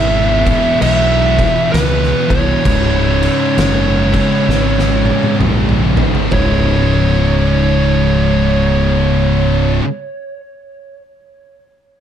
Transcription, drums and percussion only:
0.47 kick, crash
0.82 crash
1.39 kick, crash
1.74 snare, crash
2.03 snare
2.30 kick, crash
2.65 kick, crash
3.23 crash
3.58 snare, crash
4.14 kick, crash
4.50 snare
4.79 snare
5.05 high tom
5.23 high tom
5.41 mid tom
5.69 mid tom
5.97 floor tom
6.15 floor tom
6.31 kick, floor tom

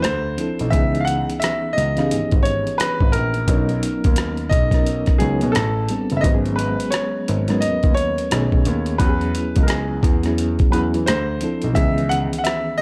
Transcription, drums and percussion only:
0.04 cross-stick, closed hi-hat
0.38 closed hi-hat
0.59 closed hi-hat
0.72 kick, closed hi-hat
0.95 closed hi-hat
1.07 closed hi-hat
1.30 closed hi-hat
1.42 cross-stick, closed hi-hat
1.78 closed hi-hat
1.97 cross-stick, closed hi-hat
2.11 closed hi-hat
2.31 kick, closed hi-hat
2.45 closed hi-hat
2.67 closed hi-hat
2.80 cross-stick, closed hi-hat
3.01 kick
3.13 closed hi-hat
3.34 closed hi-hat
3.48 kick, closed hi-hat
3.69 closed hi-hat
3.83 closed hi-hat
4.04 kick, closed hi-hat
4.16 cross-stick, closed hi-hat
4.37 closed hi-hat
4.51 kick, closed hi-hat
4.71 kick, cross-stick, closed hi-hat
4.87 closed hi-hat
5.06 kick, cross-stick, closed hi-hat
5.20 closed hi-hat
5.41 closed hi-hat
5.55 cross-stick, closed hi-hat
5.89 closed hi-hat
6.10 closed hi-hat
6.24 kick, closed hi-hat
6.46 closed hi-hat
6.59 closed hi-hat
6.80 closed hi-hat
6.92 cross-stick, closed hi-hat
7.28 closed hi-hat
7.48 cross-stick, closed hi-hat
7.62 closed hi-hat
7.83 kick, closed hi-hat
7.97 closed hi-hat
8.18 closed hi-hat
8.31 cross-stick, closed hi-hat
8.52 kick
8.65 closed hi-hat
8.86 closed hi-hat
9.00 kick, closed hi-hat
9.21 closed hi-hat
9.35 closed hi-hat
9.56 kick, closed hi-hat
9.68 cross-stick, closed hi-hat
10.03 kick, closed hi-hat
10.23 cross-stick, closed hi-hat
10.38 closed hi-hat
10.59 kick, closed hi-hat
10.73 closed hi-hat
10.94 closed hi-hat
11.07 cross-stick, closed hi-hat
11.41 closed hi-hat
11.62 closed hi-hat
11.76 kick, closed hi-hat
11.98 closed hi-hat
12.11 closed hi-hat
12.33 closed hi-hat
12.45 cross-stick, closed hi-hat

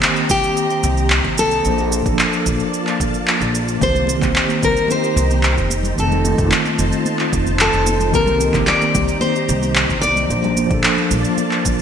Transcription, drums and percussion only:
0.03 clap, shaker
0.16 shaker
0.29 kick, shaker
0.44 shaker
0.57 shaker
0.70 shaker
0.83 shaker
0.97 shaker
1.10 clap, shaker
1.24 kick, shaker
1.38 shaker
1.51 shaker
1.65 shaker
1.78 shaker
1.92 shaker
2.06 kick, shaker
2.19 clap, shaker
2.33 shaker
2.46 kick, shaker
2.60 shaker
2.74 shaker
2.87 clap, shaker
3.00 kick, shaker
3.14 shaker
3.28 clap, shaker
3.41 shaker
3.55 shaker
3.68 shaker
3.82 kick, shaker
3.95 low conga, shaker
4.07 high conga, shaker
4.22 kick, clap, shaker
4.36 clap, shaker
4.49 high conga, shaker
4.62 kick, low conga, shaker
4.77 shaker
4.88 high conga, shaker
5.04 shaker
5.17 shaker
5.30 high conga, shaker
5.43 clap, shaker
5.57 kick, shaker
5.70 high conga, shaker
5.83 low conga, shaker
5.98 shaker
6.12 low conga, shaker
6.25 high conga, shaker
6.38 kick, shaker
6.52 clap, shaker
6.65 high conga, shaker
6.79 low conga, shaker
6.92 shaker
7.05 high conga, shaker
7.19 clap, shaker
7.33 kick, shaker
7.46 high conga, shaker
7.59 clap, shaker
7.73 shaker
7.86 high conga, shaker
8.00 low conga, shaker
8.14 kick, shaker
8.26 low conga, shaker
8.40 high conga, shaker
8.54 kick, clap, shaker
8.67 clap, shaker
8.81 high conga, shaker
8.95 kick, low conga, shaker
9.08 shaker
9.21 high conga, shaker
9.36 shaker
9.49 shaker
9.63 high conga, shaker
9.76 clap, shaker
9.90 kick, shaker
10.03 high conga, shaker
10.16 low conga, shaker
10.30 shaker
10.44 low conga, shaker
10.57 high conga, shaker
10.71 kick, shaker
10.84 clap, shaker
10.98 high conga, shaker
11.11 low conga, shaker
11.24 shaker
11.38 high conga, shaker
11.51 clap, shaker
11.65 kick, shaker
11.79 high conga

